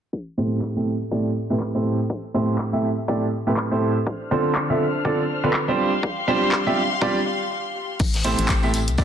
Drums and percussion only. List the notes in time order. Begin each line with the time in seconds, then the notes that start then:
0.13 kick
0.62 kick, clap
1.11 kick
1.60 kick, clap
2.10 kick
2.59 kick, clap
3.08 kick
3.57 kick, clap
4.07 kick
4.55 kick, clap
5.05 kick
5.54 kick, clap
6.03 kick
6.52 kick, clap
7.02 kick
7.99 kick, closed hi-hat, crash, tambourine
8.14 snare, closed hi-hat
8.24 snare, closed hi-hat, open hi-hat, tambourine
8.39 closed hi-hat, tambourine
8.49 kick, snare, clap, closed hi-hat, tambourine
8.63 tambourine
8.74 closed hi-hat, open hi-hat, tambourine
8.87 closed hi-hat, tambourine
8.98 kick, closed hi-hat, tambourine